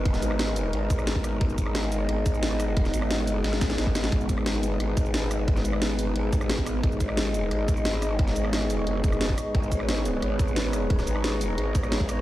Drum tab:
HH |x-x-x-o-x-x-x-x-|x-x-x-x-x-x-x-x-|x-x-x-o-x-x-x-x-|x-x-x-x-x-x-x-x-|
SH |-xx---x---xx--x-|-xx---x---xx--x-|-xx---x---xx--x-|-xx---x---xx--x-|
SD |-o-ro------ro-r-|---ro---r---o-r-|-o-ro---ooooo-oo|---ro---r---o-r-|
BD |o---------o--o--|o-o-------o-----|o---------o--o--|o-o-------o-----|

HH |x-x-x-o-x-x-x-x-|x-x-x-x-x-x-x-x-|x-x-x-o-x-x-x-x-|x-x-x-x-x-x-x-x-|
SH |-xx---x---xx--x-|-xx---x---xx--x-|-xx---x---xx--x-|-xx---x---xx--x-|
SD |-o-ro------ro-r-|---ro---r---o-r-|-o-ro------ro-r-|---ro---r---o-r-|
BD |o---------o--o--|o-o-------o-----|o---------o--o--|o-o-------o-----|

HH |x-x-x-o-x-x-x-x-|
SH |-xx---x---xx--x-|
SD |-o-ro------ro-r-|
BD |o---------o--o--|